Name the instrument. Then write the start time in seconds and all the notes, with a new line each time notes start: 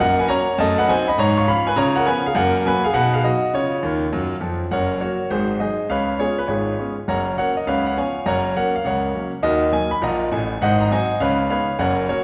grand piano
0.00 F#2 A#3 A#4 F#5
0.19 B4 G#5
0.28 F#3 A#3 C#4 C#5 A#5
0.58 F#2 A3 D#5 A5
0.78 B4 F#5
0.88 F#3 C4 D#4 C5 G#5
1.08 D#5 B5
1.18 G#2 C#5 A#5
1.37 F5 C#6
1.48 F3 C#4 F5 B5
1.67 B4 G#5
1.76 C#3 F4 C#5 A#5
1.96 A#4 F#5
2.06 F3 B3 C#4 B4 G#5
2.26 G#4 F5
2.35 F#2 A#3 A#4 F#5
2.65 F#3 A#3 C#4 B4 G#5
2.84 G#4 F5
2.94 B2 D#4 B4 F#5
3.14 G#4 F5
3.24 F#3 B3 D#4 F#4 D#5
3.54 C#3 F4 C#5
3.83 D#2 D#3
4.13 F#2 F#3
4.41 F2 F3
4.71 F#1 F#2 A#4 C#5 F#5
5.00 F#3 A#3 F#4 A#4 C#5
5.30 G#1 G#2 F#4 G#4 C5
5.60 F#3 G#3 D#4 G#4 C5 D#5
5.89 C#2 C#3 B4 C#5 F5
6.19 G#3 B3 C#4 F4 G#4 C#5
6.38 B4
6.48 G#1 G#2 F4 G#4 C#5
6.78 G#3 B3 C#4
7.08 F#1 F#2 C#5 F#5 A#5
7.37 F#3 A#3 C#4 A#4 C#5 F#5
7.57 D#5
7.67 C#2 C#3 B4 C#5 F5
7.86 F#5
7.97 F3 B3 C#4 C#5 F5 G#5
8.26 F#1 F#2 C#5 F#5 A#5
8.56 F#3 A#3 C#4 A#4 C#5 F#5
8.76 F5
8.85 C#2 C#3 A#4 C#5 F#5
9.15 F#3 A#3 C#4
9.43 D#2 D#3 F#4 A#4 D#5
9.73 F#3 A#3 D#4 G#5
9.91 B5
10.02 A#1 A#2 D#5 F#5 A#5
10.32 A1 A2 G#5
10.61 G#1 G#2 C5 D#5 F#5
10.80 A#5
10.91 F#3 C4 D#4 C5 D#5 G#5
11.20 C#2 C#3 B4 C#5 F5
11.49 G#3 B3 D#4 B4 C#5 F5
11.79 F#1 F#2 A#4 C#5 F#5
12.09 F#3 A#3 F#4 A#4 C#5